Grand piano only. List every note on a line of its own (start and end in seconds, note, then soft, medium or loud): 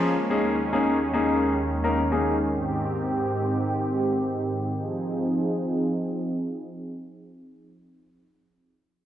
0.00 0.13 F3 medium
0.00 0.13 A#3 medium
0.00 0.13 C#4 medium
0.00 0.13 F4 medium
0.00 0.13 G#4 medium
0.30 0.54 A#3 medium
0.30 0.54 C#4 medium
0.30 0.54 D#4 medium
0.30 0.54 G#4 medium
0.73 0.96 A#3 medium
0.73 0.96 C#4 medium
0.73 0.96 D#4 medium
0.73 0.96 G#4 medium
1.13 1.53 A#3 medium
1.13 1.54 C#4 medium
1.13 1.54 D#4 medium
1.13 1.54 G#4 medium
1.84 1.99 A#3 medium
1.84 1.99 C#4 medium
1.84 1.99 D#4 medium
1.84 1.99 A#4 medium
2.12 2.35 A#3 medium
2.12 2.35 C#4 medium
2.12 2.35 D#4 medium
2.12 2.35 G#4 medium